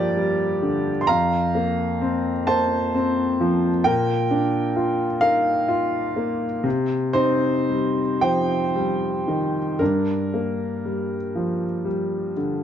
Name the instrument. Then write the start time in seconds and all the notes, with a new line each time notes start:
grand piano
Already playing: G2 F3 G3 A#3 D4 G4 A#4 D5
0.17 G3
0.62 D3
1.01 C6
1.07 F2 F5 A#5
1.55 A#3
2.01 C4
2.47 A#3 C5 A5
2.95 C4
3.41 F3
3.84 A#2 A#4 G5
4.31 D4
4.76 F4
5.21 D#4 A#4 F5
5.68 F4
6.16 A#3
6.63 C3
7.13 C4 D#4 C5
7.69 G3
8.21 F3 C5 G5
8.76 G3
9.28 D#3
9.79 G2 D4 A#4
10.34 A#3
10.85 G3
11.36 F3
11.85 G3
12.37 D3